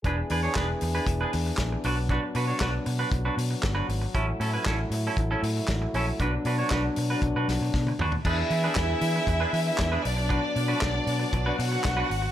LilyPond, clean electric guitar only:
\new Staff \with { instrumentName = "Clean electric guitar" } { \time 4/4 \key b \dorian \tempo 4 = 117 <d' gis' b'>16 r16 <d' gis' b'>16 <d' gis' cis''>16 <d' gis' b'>16 r8 <d' gis' b'>16 r16 <d' gis' b'>16 r4 <d' fis' b'>16 r16 | <d' fis' b'>16 r16 <d' fis' b'>16 <d' fis' cis''>16 <d' fis' b'>16 r8 <d' fis' b'>16 r16 <d' fis' b'>16 r8. <d' fis' b'>16 r8 | <cis' e' a'>16 r16 <cis' e' a'>16 <cis' e' b'>16 <cis' e' a'>16 r8 <cis' e' a'>16 r16 <cis' e' a'>16 r4 <cis' e' a'>16 r16 | <d' fis' b'>16 r16 <d' fis' b'>16 <d' fis' cis''>16 <d' fis' b'>16 r8 <d' fis' b'>16 r16 <d' fis' b'>16 r4 <d' fis' b'>16 r16 |
<d' gis' b'>16 r8 <d' gis' b'>16 r4 r16 <d' gis' b'>16 r8. <d' gis' b'>16 r8 | <d' fis' b'>16 r8 <d' fis' b'>16 r4 r16 <d' fis' b'>16 r8. <d' fis' b'>16 r8 | }